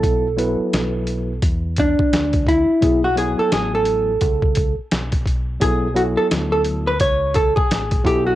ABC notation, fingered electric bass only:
X:1
M:4/4
L:1/16
Q:"Swing 16ths" 1/4=86
K:Bdor
V:1 name="Fingered electric bass" clef=bass
B,,,3 z B,,,4 E,,3 z D,,3 z | B,,,3 z A,,,4 C,,3 z B,,,4 | B,,,3 z D,,4 C,,3 z A,,,2 B,,,2 |]